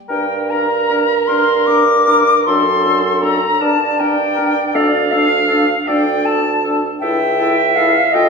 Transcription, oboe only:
0.09 A#4
0.50 A#4
0.90 A#4
1.28 A#4
1.67 A#4
2.06 A#4
2.46 A4
2.86 A4
3.22 A4
3.60 A#4
3.98 A#4
4.35 A#4
4.74 A4
5.10 A4
5.48 A4
5.86 A4
6.24 A4
6.64 A4
7.01 A4
7.39 A4
7.76 A4
8.13 A4

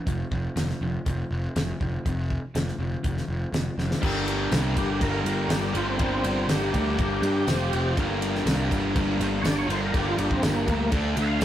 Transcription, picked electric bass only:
0.07 F1
0.31 F1
0.56 F1
0.81 F1
1.06 F1
1.31 F1
1.56 F1
1.81 F1
2.06 F1
2.55 F1
2.79 F1
3.04 F1
3.28 F1
3.53 F1
3.78 F1
4.03 G1
4.52 C2
4.77 G1
5.01 G1
5.25 G1
5.49 G1
5.75 G1
5.99 G1
6.24 G1
6.48 G1
6.74 D2
6.98 G1
7.22 G2
7.47 F1
7.73 F1
7.97 G1
8.46 C2
8.71 G1
8.96 G1
9.20 G1
9.44 G1
9.69 G1
9.94 G1
10.18 G1
10.43 G1
10.67 D2
10.92 D2
11.17 D2
11.42 C#2

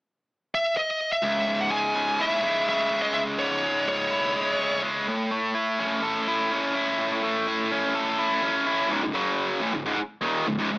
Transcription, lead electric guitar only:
0.55 E5
0.77 D#5
1.12 E5
1.61 F#5
1.71 G#5
2.21 E5
2.69 E5
3.02 D#5
3.14 E5
3.39 C#5
3.89 C#5

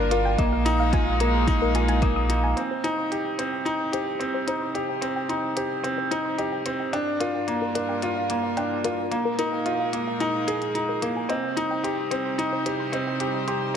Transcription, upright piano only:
Already playing: A#3 D4 F4
0.11 F4
0.38 A#3
0.65 D#4
0.93 F4
1.20 A#3
1.47 D#4
1.75 F4
2.02 A#3
2.29 D#4
2.57 C4
2.84 D#4
3.11 G4
3.39 C4
3.65 D#4
3.92 G4
4.20 C4
4.47 D#4
4.75 G4
5.01 C4
5.29 D#4
5.56 G4
5.84 C4
6.11 D#4
6.38 G4
6.66 C4
6.93 D4
7.20 F4
7.48 A#3
7.75 D4
8.03 F4
8.30 A#3
8.57 D4
8.85 F4
9.11 A#3
9.39 D#4
9.66 F4
9.93 A#3
10.20 D#4
10.47 G#4
10.75 D#4
11.02 A#3
11.29 C4
11.57 D#4
11.84 G4
12.11 C4
12.38 D#4
12.66 G4
12.92 C4
13.20 G4
13.48 G4

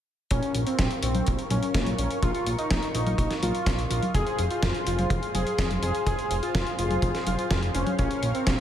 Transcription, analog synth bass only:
0.31 A#1
0.55 A#1
0.79 A#1
1.03 A#1
1.28 A#1
1.51 A#1
1.74 A#1
1.99 A#1
2.23 A#1
2.47 A#1
2.71 A#1
2.95 A#1
3.18 A#1
3.43 A#1
3.66 A#1
3.91 A#1
4.15 F1
4.39 F1
4.63 F1
4.87 F1
5.10 F1
5.35 F1
5.58 F1
5.83 F1
6.07 F1
6.31 F1
6.55 F1
6.79 F1
7.02 F1
7.27 F1
7.51 F1
7.75 F1
7.99 A#1
8.23 A#1
8.47 A#1

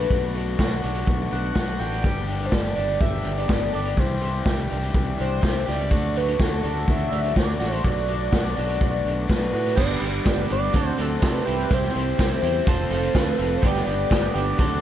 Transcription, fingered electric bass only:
0.10 B1
0.60 B1
0.84 B1
1.07 B1
1.32 B1
1.56 B1
1.80 A1
2.04 G1
2.53 G1
2.78 G1
3.01 G1
3.26 G1
3.49 G1
3.74 G1
3.98 C2
4.46 C2
4.72 C2
4.94 C2
5.20 C2
5.43 C2
5.68 C#2
5.91 D2
6.40 D2
6.64 D2
6.88 D2
7.12 D2
7.36 D2
7.61 A1
7.85 B1
8.33 B1
8.58 B1
8.82 B1
9.05 B1
9.30 B1
9.53 A2
9.78 G1
10.01 G1
10.26 G1
10.51 G1
10.75 D2
10.99 D2
11.23 C3
11.47 C2
11.72 C2
11.95 C2
12.20 C2
12.43 E2
12.67 F1
12.91 F1
13.15 D2
13.39 F1
13.64 G1
13.87 G1
14.12 G1
14.35 G1
14.59 D2

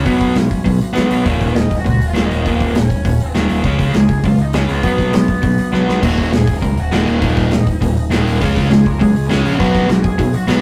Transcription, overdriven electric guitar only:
0.05 B2 F#3 B3
0.36 B2 F#3
0.65 B2 F#3
0.93 B2 F#3 B3
1.24 D#2 A#2 D#3
1.54 D#2 A#2
1.84 D#2 A#2
2.13 D#2 A#2 D#3
2.46 D#2 A#2 D#3
2.75 D#2 A#2
3.05 D#2 A#2
3.35 D#2 A#2 D#3
3.65 C#3 G#3 C#4
3.96 C#3 G#3
4.25 C#3 G#3
4.54 C#3 G#3 C#4
4.83 B2 F#3 B3
5.13 B2 F#3
5.42 B2 F#3
5.72 B2 F#3 B3
6.01 D#2 A#2 D#3
6.32 D#2 A#2
6.61 D#2 A#2
6.92 D#2 A#2 D#3
7.21 D#2 A#2 D#3
7.52 D#2 A#2
7.81 D#2 A#2
8.10 D#2 A#2 D#3
8.41 C#3 G#3 C#4
8.70 C#3 G#3
9.00 C#3 G#3
9.30 C#3 G#3 C#4
9.59 B2 F#3 B3
9.89 B2 F#3
10.18 B2 F#3
10.48 B2 F#3 B3

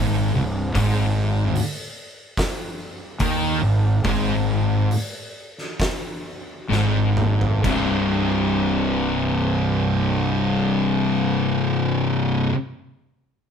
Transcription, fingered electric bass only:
Already playing: G#1
0.36 C1
0.76 G#1
3.20 D#2
3.63 G#1
4.05 G#1
6.70 G#1
7.64 C1

